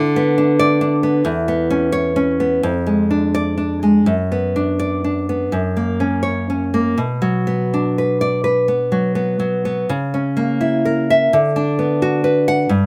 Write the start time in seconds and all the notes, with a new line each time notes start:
Already playing: D3
0.16 B3
0.38 D4
0.59 D5
0.81 D4
1.03 B3
1.25 E2
1.48 B3
1.70 C#4
1.92 C#5
2.16 C#4
2.40 B3
2.63 F2
2.87 G#3
3.11 D4
3.35 D5
3.58 D4
3.83 G#3
4.06 F#2
4.32 B3
4.56 D4
4.79 D5
5.04 D4
5.29 B3
5.52 F#2
5.77 A#3
6.00 C#4
6.23 C#5
6.50 C#4
6.74 A#3
6.98 B2
7.22 F#3
7.47 B3
7.74 D4
7.98 B4
8.21 D5
8.44 B4
8.68 B3
8.92 F#3
9.15 B3
9.40 F#3
9.65 B3
9.89 C#3
10.14 C#4
10.37 A#3
10.61 E4
10.85 A#4
11.10 E5
11.33 D3
11.56 D4
11.79 B3
12.02 F#4
12.24 B4
12.48 F#5
12.69 G2